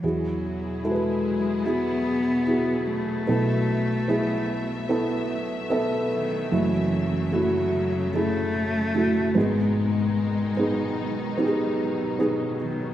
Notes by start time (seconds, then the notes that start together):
0.03 E2 B2 E3 F#3 E4 F#4 G#4
0.83 G#3 E4 F#4 A4
0.91 B4
1.65 B3 E4 F#4 G#4
2.47 E4 F#4 G#4
2.86 A3
3.27 B1 B2 A3 B3 E4 A4 E5
4.08 B3 E4 G#4
4.89 B3 E4 A4
5.70 B3 A4 E5
6.12 D#3
6.52 F#1 F#2 C#3 E3 F#3 A3 E4 F#4
7.32 F#3 A3 E4 F#4
8.14 A3 E4 G#4
8.95 A3 E4 F#4
9.35 G#1 G#2 B2 D#3 G#3 B3 D#4 G#4
10.57 B3 D#4 G#4
10.99 F#3
11.38 B3 D#4 G4
11.45 G#4
12.19 B3 D#4 G#4
12.61 D#3